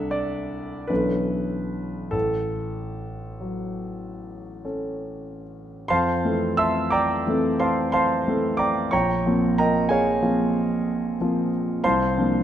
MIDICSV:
0, 0, Header, 1, 2, 480
1, 0, Start_track
1, 0, Key_signature, 3, "major"
1, 0, Tempo, 780234
1, 797, Tempo, 843882
1, 1275, Time_signature, 9, 3, 24, 8
1, 3197, Tempo, 745342
1, 3449, Key_signature, -1, "major"
1, 3677, Tempo, 667408
1, 5597, Tempo, 646552
1, 8198, End_track
2, 0, Start_track
2, 0, Title_t, "Grand piano"
2, 0, Program_c, 0, 0
2, 0, Control_c, 0, 64, 127
2, 0, Note_on_c, 0, 36, 50
2, 0, Note_on_c, 0, 62, 39
2, 0, Note_on_c, 0, 69, 40
2, 0, Note_on_c, 0, 76, 66
2, 0, Note_on_c, 0, 78, 92
2, 67, Note_on_c, 0, 74, 67
2, 71, Note_off_c, 0, 76, 0
2, 525, Note_off_c, 0, 62, 0
2, 528, Note_off_c, 0, 69, 0
2, 529, Note_off_c, 0, 36, 0
2, 538, Note_on_c, 0, 71, 66
2, 548, Note_off_c, 0, 74, 0
2, 548, Note_on_c, 0, 69, 33
2, 549, Note_on_c, 0, 62, 34
2, 551, Note_on_c, 0, 52, 32
2, 553, Note_on_c, 0, 35, 44
2, 554, Note_on_c, 0, 61, 32
2, 564, Control_c, 0, 64, 0
2, 567, Note_off_c, 0, 78, 0
2, 661, Control_c, 0, 64, 127
2, 1251, Note_off_c, 0, 69, 0
2, 1252, Note_off_c, 0, 52, 0
2, 1253, Note_off_c, 0, 61, 0
2, 1254, Note_off_c, 0, 35, 0
2, 1254, Note_off_c, 0, 62, 0
2, 1260, Note_on_c, 0, 69, 63
2, 1265, Note_on_c, 0, 33, 39
2, 1269, Note_off_c, 0, 71, 0
2, 1287, Control_c, 0, 64, 0
2, 1376, Control_c, 0, 64, 127
2, 1997, Note_on_c, 0, 54, 28
2, 2696, Note_off_c, 0, 69, 0
2, 2703, Note_on_c, 0, 61, 30
2, 2705, Note_on_c, 0, 69, 31
2, 3144, Note_off_c, 0, 54, 0
2, 3417, Note_off_c, 0, 33, 0
2, 3419, Note_off_c, 0, 61, 0
2, 3421, Note_off_c, 0, 69, 0
2, 3434, Note_on_c, 0, 84, 84
2, 3446, Note_on_c, 0, 77, 66
2, 3447, Note_on_c, 0, 81, 64
2, 3448, Note_on_c, 0, 72, 63
2, 3450, Note_on_c, 0, 41, 50
2, 3461, Control_c, 0, 64, 0
2, 3548, Control_c, 0, 64, 127
2, 3667, Note_on_c, 0, 52, 33
2, 3669, Note_off_c, 0, 41, 0
2, 3671, Note_on_c, 0, 57, 37
2, 3676, Note_on_c, 0, 60, 32
2, 3677, Note_on_c, 0, 69, 36
2, 3895, Note_off_c, 0, 77, 0
2, 3895, Note_off_c, 0, 81, 0
2, 3896, Note_off_c, 0, 72, 0
2, 3901, Note_off_c, 0, 84, 0
2, 3902, Note_on_c, 0, 88, 80
2, 3910, Note_on_c, 0, 76, 65
2, 3912, Note_on_c, 0, 84, 63
2, 3913, Note_on_c, 0, 81, 62
2, 4140, Note_on_c, 0, 86, 74
2, 4143, Note_off_c, 0, 76, 0
2, 4145, Note_off_c, 0, 81, 0
2, 4145, Note_off_c, 0, 84, 0
2, 4151, Note_on_c, 0, 82, 66
2, 4152, Note_on_c, 0, 79, 62
2, 4155, Note_on_c, 0, 74, 58
2, 4157, Note_off_c, 0, 88, 0
2, 4376, Note_off_c, 0, 52, 0
2, 4377, Note_off_c, 0, 57, 0
2, 4380, Note_off_c, 0, 60, 0
2, 4381, Note_off_c, 0, 69, 0
2, 4403, Note_on_c, 0, 52, 37
2, 4408, Note_on_c, 0, 57, 34
2, 4410, Note_on_c, 0, 60, 37
2, 4416, Note_on_c, 0, 69, 40
2, 4608, Note_off_c, 0, 82, 0
2, 4609, Note_off_c, 0, 79, 0
2, 4611, Note_off_c, 0, 74, 0
2, 4632, Note_off_c, 0, 86, 0
2, 4637, Note_on_c, 0, 84, 74
2, 4638, Note_on_c, 0, 72, 55
2, 4641, Note_on_c, 0, 77, 53
2, 4643, Note_on_c, 0, 81, 55
2, 4859, Note_off_c, 0, 72, 0
2, 4861, Note_off_c, 0, 77, 0
2, 4861, Note_off_c, 0, 84, 0
2, 4862, Note_off_c, 0, 81, 0
2, 4872, Note_on_c, 0, 84, 84
2, 4880, Note_on_c, 0, 77, 64
2, 4880, Note_on_c, 0, 81, 63
2, 4883, Note_on_c, 0, 72, 61
2, 5085, Note_off_c, 0, 52, 0
2, 5088, Note_off_c, 0, 57, 0
2, 5089, Note_off_c, 0, 60, 0
2, 5092, Note_off_c, 0, 69, 0
2, 5128, Note_on_c, 0, 52, 34
2, 5129, Note_on_c, 0, 57, 36
2, 5129, Note_on_c, 0, 60, 35
2, 5136, Note_on_c, 0, 69, 41
2, 5329, Note_off_c, 0, 77, 0
2, 5329, Note_off_c, 0, 81, 0
2, 5331, Note_off_c, 0, 72, 0
2, 5339, Note_on_c, 0, 86, 70
2, 5352, Note_on_c, 0, 82, 52
2, 5353, Note_on_c, 0, 79, 51
2, 5354, Note_off_c, 0, 84, 0
2, 5354, Note_on_c, 0, 74, 49
2, 5572, Note_off_c, 0, 52, 0
2, 5573, Note_off_c, 0, 57, 0
2, 5573, Note_off_c, 0, 60, 0
2, 5576, Note_off_c, 0, 82, 0
2, 5577, Note_off_c, 0, 69, 0
2, 5577, Note_off_c, 0, 74, 0
2, 5577, Note_off_c, 0, 79, 0
2, 5582, Note_on_c, 0, 85, 76
2, 5587, Note_off_c, 0, 86, 0
2, 5591, Note_on_c, 0, 73, 62
2, 5596, Note_on_c, 0, 34, 50
2, 5596, Note_on_c, 0, 82, 65
2, 5598, Note_on_c, 0, 79, 64
2, 5606, Control_c, 0, 64, 0
2, 5706, Control_c, 0, 64, 127
2, 5830, Note_off_c, 0, 34, 0
2, 5841, Note_on_c, 0, 53, 37
2, 5843, Note_on_c, 0, 60, 37
2, 5844, Note_on_c, 0, 58, 36
2, 5850, Note_on_c, 0, 65, 36
2, 6046, Note_off_c, 0, 73, 0
2, 6048, Note_off_c, 0, 82, 0
2, 6049, Note_off_c, 0, 79, 0
2, 6071, Note_off_c, 0, 85, 0
2, 6082, Note_on_c, 0, 82, 73
2, 6085, Note_on_c, 0, 79, 54
2, 6087, Note_on_c, 0, 70, 54
2, 6087, Note_on_c, 0, 75, 57
2, 6305, Note_off_c, 0, 79, 0
2, 6306, Note_off_c, 0, 70, 0
2, 6306, Note_off_c, 0, 75, 0
2, 6309, Note_on_c, 0, 80, 71
2, 6319, Note_on_c, 0, 68, 52
2, 6320, Note_off_c, 0, 82, 0
2, 6322, Note_on_c, 0, 77, 52
2, 6323, Note_on_c, 0, 73, 58
2, 6532, Note_off_c, 0, 53, 0
2, 6533, Note_off_c, 0, 58, 0
2, 6533, Note_off_c, 0, 60, 0
2, 6537, Note_off_c, 0, 65, 0
2, 6553, Note_on_c, 0, 58, 36
2, 6555, Note_on_c, 0, 53, 34
2, 6560, Note_on_c, 0, 65, 42
2, 6561, Note_on_c, 0, 60, 37
2, 7253, Note_off_c, 0, 58, 0
2, 7254, Note_off_c, 0, 53, 0
2, 7256, Note_off_c, 0, 65, 0
2, 7257, Note_off_c, 0, 60, 0
2, 7288, Note_on_c, 0, 53, 38
2, 7289, Note_on_c, 0, 58, 35
2, 7293, Note_on_c, 0, 60, 33
2, 7295, Note_on_c, 0, 65, 39
2, 7495, Note_off_c, 0, 68, 0
2, 7496, Note_off_c, 0, 77, 0
2, 7497, Note_off_c, 0, 73, 0
2, 7519, Note_off_c, 0, 80, 0
2, 7732, Note_off_c, 0, 53, 0
2, 7733, Note_off_c, 0, 58, 0
2, 7734, Note_off_c, 0, 60, 0
2, 7735, Note_off_c, 0, 65, 0
2, 7755, Note_on_c, 0, 77, 63
2, 7757, Note_on_c, 0, 81, 59
2, 7757, Note_on_c, 0, 84, 80
2, 7758, Note_on_c, 0, 72, 66
2, 7765, Note_on_c, 0, 36, 53
2, 7771, Control_c, 0, 64, 0
2, 7867, Control_c, 0, 64, 127
2, 7993, Note_off_c, 0, 36, 0
2, 8008, Note_on_c, 0, 53, 37
2, 8009, Note_on_c, 0, 60, 37
2, 8012, Note_on_c, 0, 62, 40
2, 8016, Note_on_c, 0, 58, 33
2, 8198, Note_off_c, 0, 53, 0
2, 8198, Note_off_c, 0, 58, 0
2, 8198, Note_off_c, 0, 60, 0
2, 8198, Note_off_c, 0, 62, 0
2, 8198, Note_off_c, 0, 72, 0
2, 8198, Note_off_c, 0, 77, 0
2, 8198, Note_off_c, 0, 81, 0
2, 8198, Note_off_c, 0, 84, 0
2, 8198, End_track
0, 0, End_of_file